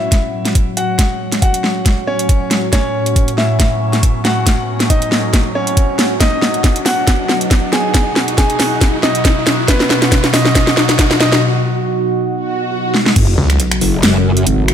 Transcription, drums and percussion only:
0.12 kick, snare, closed hi-hat
0.45 snare, closed hi-hat
0.55 kick, closed hi-hat
0.77 closed hi-hat
0.99 kick, snare, closed hi-hat
1.32 snare, closed hi-hat
1.42 kick, closed hi-hat
1.54 closed hi-hat
1.64 snare
1.86 kick, snare, closed hi-hat
2.19 closed hi-hat
2.29 kick, closed hi-hat
2.51 snare, closed hi-hat
2.73 kick, snare, closed hi-hat
3.06 closed hi-hat
3.16 kick, closed hi-hat
3.28 closed hi-hat
3.38 snare
3.60 kick, snare, closed hi-hat
3.93 snare, closed hi-hat
4.03 kick, closed hi-hat
4.25 snare, closed hi-hat
4.47 kick, snare, closed hi-hat
4.80 snare, closed hi-hat
4.90 kick, closed hi-hat
5.02 closed hi-hat
5.12 snare
5.33 kick, snare, closed hi-hat
5.67 closed hi-hat
5.77 kick, closed hi-hat
5.99 snare, closed hi-hat
6.20 kick, snare, closed hi-hat
6.42 snare
6.54 closed hi-hat
6.64 kick, snare, closed hi-hat
6.76 closed hi-hat
6.86 snare, open hi-hat
7.07 kick, snare, closed hi-hat
7.29 snare
7.41 closed hi-hat
7.51 kick, snare, closed hi-hat
7.73 snare, closed hi-hat
7.94 kick, snare, closed hi-hat
8.16 snare
8.28 closed hi-hat
8.38 kick, snare, closed hi-hat
8.50 closed hi-hat
8.60 snare, open hi-hat
8.81 kick, snare, closed hi-hat
9.03 snare
9.15 closed hi-hat
9.25 kick, snare, closed hi-hat
9.47 snare, closed hi-hat
9.68 kick, snare, closed hi-hat
9.80 snare
9.90 snare
10.02 snare, closed hi-hat
10.12 kick, snare, closed hi-hat
10.24 snare, closed hi-hat
10.34 snare, open hi-hat
10.45 snare
10.55 kick, snare, closed hi-hat
10.67 snare
10.77 snare
10.89 snare, closed hi-hat
10.99 kick, snare, closed hi-hat
11.11 snare
11.20 snare, closed hi-hat
11.32 snare
12.94 snare
13.06 snare
13.16 kick, closed hi-hat, crash
13.50 finger snap, closed hi-hat
13.60 closed hi-hat
13.71 finger snap, closed hi-hat
13.81 open hi-hat
14.03 snare, closed hi-hat
14.37 closed hi-hat
14.47 closed hi-hat
14.68 finger snap, closed hi-hat

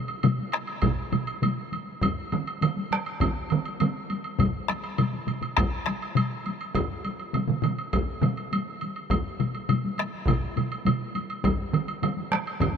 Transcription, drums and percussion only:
0.08 taiko high, high woodblock
0.23 taiko low-mid, taiko high, high woodblock
0.39 taiko high
0.52 taiko rim, high woodblock
0.67 taiko high, high woodblock
0.82 taiko, taiko low-mid, taiko high, high woodblock
0.98 taiko high
1.13 taiko low-mid, taiko high, high woodblock
1.27 taiko high, high woodblock
1.42 taiko low-mid, taiko high, high woodblock
1.58 taiko high
1.72 taiko high, high woodblock
1.88 taiko high
2.02 taiko, taiko high, high woodblock
2.16 taiko high
2.32 taiko mid, taiko high, high woodblock
2.47 taiko high, high woodblock
2.61 taiko mid, taiko high, high woodblock
2.76 taiko high
2.91 taiko rim, taiko high, high woodblock
3.06 taiko high, high woodblock
3.20 taiko, taiko mid, taiko high, high woodblock
3.36 taiko high
3.50 taiko mid, taiko high, high woodblock
3.65 taiko high, high woodblock
3.80 taiko mid, taiko high, high woodblock
3.95 taiko high
4.10 taiko high, high woodblock
4.24 taiko high, high woodblock
4.39 taiko, taiko low-mid, taiko high, high woodblock
4.54 taiko high
4.68 taiko rim, taiko high, high woodblock
4.84 taiko high, high woodblock
4.98 taiko low-mid, taiko high, high woodblock
5.13 taiko high
5.27 taiko low-mid, taiko high, high woodblock
5.42 taiko low-mid, taiko high, high woodblock
5.57 taiko rim, taiko, taiko high, high woodblock
5.73 taiko high
5.86 taiko rim, taiko high, high woodblock
6.02 taiko high, high woodblock
6.15 taiko low-mid, taiko high, high woodblock
6.32 taiko high
6.46 taiko high, high woodblock
6.60 taiko high, high woodblock
6.75 taiko, taiko high, high woodblock
6.91 taiko high
7.05 taiko high, high woodblock
7.19 taiko high, high woodblock
7.33 taiko low-mid, taiko mid, taiko high, high woodblock
7.47 taiko low-mid, taiko mid, taiko high
7.62 taiko low-mid, taiko mid, taiko high, high woodblock
7.78 taiko high, high woodblock
7.93 taiko, taiko high, high woodblock
8.09 taiko high
8.21 taiko low-mid, taiko mid, taiko high, high woodblock
8.37 taiko high, high woodblock
8.52 taiko high, high woodblock
8.67 taiko high
8.81 taiko high, high woodblock
8.96 taiko high, high woodblock
9.10 taiko, taiko high, high woodblock
9.26 taiko high
9.40 taiko low-mid, taiko high, high woodblock
9.55 taiko high, high woodblock
9.69 taiko low-mid, taiko high, high woodblock
9.84 taiko high
9.98 taiko rim, taiko high, high woodblock
10.13 taiko high
10.27 taiko, taiko low-mid, taiko high, high woodblock
10.41 taiko high
10.56 taiko low-mid, taiko high, high woodblock
10.71 taiko high, high woodblock
10.85 taiko low-mid, taiko high, high woodblock
11.00 taiko high
11.15 taiko high, high woodblock
11.29 taiko high, high woodblock
11.44 taiko, taiko high, high woodblock
11.58 taiko high
11.73 taiko mid, taiko high, high woodblock
11.88 taiko high, high woodblock
12.02 taiko mid, taiko high, high woodblock
12.17 taiko high
12.31 taiko rim, taiko high, high woodblock
12.46 taiko high, high woodblock
12.60 taiko, taiko mid, taiko high, high woodblock

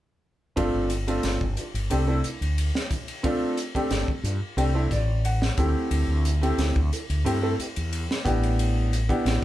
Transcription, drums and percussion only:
0.57 kick, ride
0.90 hi-hat pedal, ride
1.08 ride
1.23 snare, ride
1.41 kick
1.57 hi-hat pedal, ride
1.75 ride
1.90 ride
2.24 hi-hat pedal, ride
2.42 ride
2.58 ride
2.75 snare
2.91 kick, hi-hat pedal, ride
3.08 ride
3.24 kick, ride
3.57 hi-hat pedal, ride
3.75 kick, ride
3.90 snare, ride
4.08 kick
4.24 hi-hat pedal, ride
4.58 ride
4.91 kick, snare, hi-hat pedal, ride
5.25 ride
5.42 snare
5.57 kick, hi-hat pedal, ride
5.91 ride
6.25 hi-hat pedal, ride
6.43 ride
6.58 snare, ride
6.76 kick
6.93 hi-hat pedal, ride
7.10 ride
7.26 ride
7.60 hi-hat pedal, ride
7.76 ride
7.93 ride
8.11 snare
8.26 kick, hi-hat pedal, ride
8.43 ride
8.59 ride
8.93 hi-hat pedal, ride
9.09 kick, ride
9.26 snare, ride

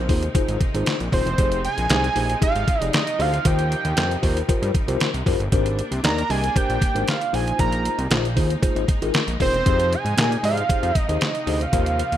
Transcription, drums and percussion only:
0.09 kick, open hi-hat
0.23 closed hi-hat
0.35 kick, closed hi-hat
0.48 closed hi-hat
0.61 kick, closed hi-hat
0.75 closed hi-hat
0.86 snare, clap, closed hi-hat
1.00 closed hi-hat
1.12 kick, open hi-hat
1.27 closed hi-hat
1.38 kick, closed hi-hat
1.52 closed hi-hat
1.65 closed hi-hat
1.78 closed hi-hat
1.90 snare, clap, closed hi-hat
2.04 closed hi-hat
2.16 open hi-hat
2.30 closed hi-hat
2.42 kick, closed hi-hat
2.56 closed hi-hat
2.68 kick, closed hi-hat
2.82 closed hi-hat
2.93 snare, clap, closed hi-hat
3.07 closed hi-hat
3.20 open hi-hat
3.34 closed hi-hat
3.45 kick, closed hi-hat
3.59 closed hi-hat
3.72 closed hi-hat
3.85 closed hi-hat
3.97 snare, clap, closed hi-hat
4.11 closed hi-hat
4.23 kick, open hi-hat
4.37 closed hi-hat
4.49 kick, closed hi-hat
4.63 closed hi-hat
4.74 kick, closed hi-hat
4.88 closed hi-hat
5.00 snare, clap, closed hi-hat
5.14 closed hi-hat
5.26 kick, open hi-hat
5.40 closed hi-hat
5.52 kick, closed hi-hat
5.66 closed hi-hat
5.79 closed hi-hat
5.92 closed hi-hat
6.04 snare, clap, closed hi-hat
6.18 closed hi-hat
6.30 open hi-hat
6.44 closed hi-hat
6.56 kick, closed hi-hat
6.70 closed hi-hat
6.81 kick, closed hi-hat
6.96 closed hi-hat
7.08 snare, clap, closed hi-hat
7.21 closed hi-hat
7.34 open hi-hat
7.48 closed hi-hat
7.59 kick, closed hi-hat
7.72 closed hi-hat
7.85 closed hi-hat
7.99 closed hi-hat
8.11 snare, clap, closed hi-hat
8.25 closed hi-hat
8.37 kick, open hi-hat
8.50 closed hi-hat
8.63 kick, closed hi-hat
8.76 closed hi-hat
8.88 kick, closed hi-hat
9.02 closed hi-hat
9.14 snare, clap, closed hi-hat
9.28 closed hi-hat
9.40 kick, open hi-hat
9.54 closed hi-hat
9.66 kick, closed hi-hat
9.80 closed hi-hat
9.93 closed hi-hat
10.06 closed hi-hat
10.18 snare, clap, closed hi-hat
10.32 closed hi-hat
10.44 open hi-hat
10.57 closed hi-hat
10.69 kick, closed hi-hat
10.83 closed hi-hat
10.95 kick, closed hi-hat
11.09 closed hi-hat
11.21 snare, clap, closed hi-hat
11.35 closed hi-hat
11.47 open hi-hat
11.61 closed hi-hat
11.73 kick, closed hi-hat
11.86 closed hi-hat
11.99 closed hi-hat
12.12 closed hi-hat

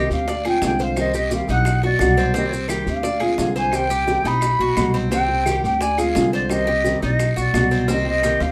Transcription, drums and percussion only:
0.11 short guiro, maracas
0.28 high bongo, long guiro, maracas
0.45 claves
0.62 high bongo, low bongo, short guiro, maracas
0.79 short guiro, maracas
0.96 high bongo, long guiro, claves, maracas
1.14 maracas
1.31 high bongo, short guiro, maracas
1.48 high bongo, short guiro, maracas
1.65 high bongo, long guiro, claves, maracas
1.83 high bongo
1.99 high bongo, low bongo, short guiro, claves, maracas
2.17 high bongo, short guiro, maracas
2.34 high bongo, long guiro, maracas
2.53 maracas
2.69 high bongo, short guiro, claves, maracas
2.87 short guiro, maracas
3.03 high bongo, long guiro, maracas
3.20 claves
3.38 high bongo, low bongo, short guiro, maracas
3.56 short guiro, maracas
3.72 high bongo, long guiro, claves, maracas
3.90 maracas
4.08 high bongo, short guiro, maracas
4.25 high bongo, short guiro, maracas
4.41 high bongo, long guiro, claves, maracas
4.60 high bongo
4.77 high bongo, low bongo, short guiro, claves, maracas
4.94 high bongo, short guiro, maracas
5.12 high bongo, long guiro, maracas
5.46 high bongo, short guiro, claves, maracas
5.65 short guiro, maracas
5.81 high bongo, long guiro, maracas
5.98 claves, maracas
6.15 high bongo, low bongo, short guiro, maracas
6.34 short guiro, maracas
6.50 high bongo, long guiro, claves, maracas
6.84 high bongo, short guiro, maracas
7.02 high bongo, short guiro, maracas
7.19 high bongo, long guiro, claves, maracas
7.37 high bongo, maracas
7.54 high bongo, low bongo, short guiro, claves, maracas
7.71 high bongo, short guiro, maracas
7.88 cowbell, long guiro, maracas
8.23 cowbell, short guiro, claves, maracas
8.40 cowbell, short guiro, maracas

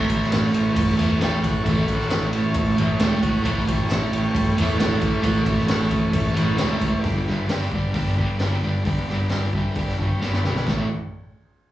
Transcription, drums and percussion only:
0.10 kick, ride
0.22 snare
0.32 snare, ride, tambourine
0.54 ride
0.76 kick, ride
0.99 ride
1.21 snare, ride, tambourine
1.44 kick, ride
1.66 kick, ride
1.88 kick, ride
2.01 snare
2.10 snare, ride, tambourine
2.33 ride
2.54 kick, ride
2.78 ride
2.99 snare, ride, tambourine
3.23 kick, ride
3.45 kick, ride
3.68 kick, ride
3.89 snare, ride, tambourine
4.13 ride
4.35 kick, ride
4.58 ride
4.79 snare, ride, tambourine
5.02 kick, ride
5.24 kick, ride
5.46 kick, ride
5.58 snare
5.68 snare, ride, tambourine
5.91 kick, ride
6.13 kick, ride
6.36 ride
6.58 snare, ride, tambourine
6.81 kick, ride
7.04 kick, open hi-hat
7.27 snare
7.49 snare, open hi-hat, tambourine
7.72 kick
7.94 kick, open hi-hat
8.17 kick
8.39 snare, open hi-hat, tambourine
8.85 kick, open hi-hat
9.09 snare
9.29 snare, open hi-hat, tambourine
9.53 kick
9.75 kick, open hi-hat
9.88 snare
9.99 kick
10.22 snare, tambourine
10.33 snare
10.44 snare
10.56 snare
10.67 kick, snare, tambourine

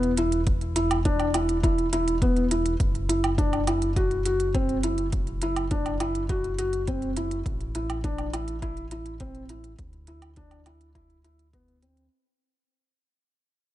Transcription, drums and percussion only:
0.03 closed hi-hat
0.17 closed hi-hat
0.32 closed hi-hat
0.47 kick, closed hi-hat
0.61 closed hi-hat
0.76 closed hi-hat
0.91 closed hi-hat, low woodblock
1.05 kick, closed hi-hat
1.20 closed hi-hat, low woodblock
1.34 closed hi-hat, low woodblock
1.49 closed hi-hat
1.63 kick, closed hi-hat
1.78 closed hi-hat
1.93 closed hi-hat
2.08 closed hi-hat
2.22 kick, closed hi-hat
2.36 closed hi-hat
2.51 closed hi-hat
2.66 closed hi-hat
2.80 kick, closed hi-hat
2.95 closed hi-hat
3.09 closed hi-hat
3.24 closed hi-hat, low woodblock
3.38 kick, closed hi-hat
3.53 closed hi-hat, low woodblock
3.67 closed hi-hat, low woodblock
3.82 closed hi-hat
3.96 kick, closed hi-hat
4.11 closed hi-hat
4.26 closed hi-hat
4.40 closed hi-hat
4.55 kick, closed hi-hat
4.69 closed hi-hat
4.83 closed hi-hat
4.98 closed hi-hat
5.12 kick, closed hi-hat
5.27 closed hi-hat
5.42 closed hi-hat
5.56 closed hi-hat, low woodblock
5.71 kick, closed hi-hat
5.86 closed hi-hat, low woodblock
6.00 closed hi-hat, low woodblock
6.15 closed hi-hat
6.29 kick, closed hi-hat
6.44 closed hi-hat
6.59 closed hi-hat
6.73 closed hi-hat
6.87 kick, closed hi-hat
7.02 closed hi-hat
7.17 closed hi-hat
7.31 closed hi-hat
7.46 kick, closed hi-hat
7.61 closed hi-hat
7.75 closed hi-hat
7.90 closed hi-hat, low woodblock
8.04 kick, closed hi-hat
8.18 closed hi-hat, low woodblock
8.34 closed hi-hat, low woodblock
8.48 closed hi-hat
8.62 kick, closed hi-hat
8.77 closed hi-hat
8.91 closed hi-hat
9.06 closed hi-hat
9.20 kick, closed hi-hat
9.35 closed hi-hat
9.49 closed hi-hat
9.64 closed hi-hat
9.79 kick, closed hi-hat
9.93 closed hi-hat
10.07 closed hi-hat
10.22 closed hi-hat, low woodblock
10.36 kick, closed hi-hat
10.51 closed hi-hat, low woodblock
10.66 closed hi-hat, low woodblock
10.81 closed hi-hat
10.95 kick, closed hi-hat
11.10 closed hi-hat
11.25 closed hi-hat
11.39 closed hi-hat
11.53 kick, closed hi-hat
11.68 closed hi-hat
11.83 closed hi-hat
11.97 closed hi-hat

